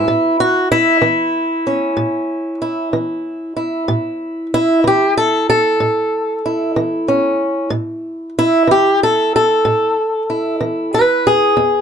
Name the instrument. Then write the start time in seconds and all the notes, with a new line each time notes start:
steel-string acoustic guitar
Already playing: E4
0.08 A2
0.40 F#4
0.72 E4
1.02 E3
1.67 C#4
1.97 A2
2.62 E4
2.93 E3
3.56 E4
3.88 A2
4.54 E4
4.84 E3 G4
5.17 A4
5.50 A4
5.80 A2
6.46 E4
6.76 E3
7.08 C#4
7.70 A2
8.39 E4
8.67 E3 G4
9.03 A4
9.36 A4
9.65 A2
10.30 E4
10.61 E3
10.94 G4 B4
11.27 G#4
11.57 E2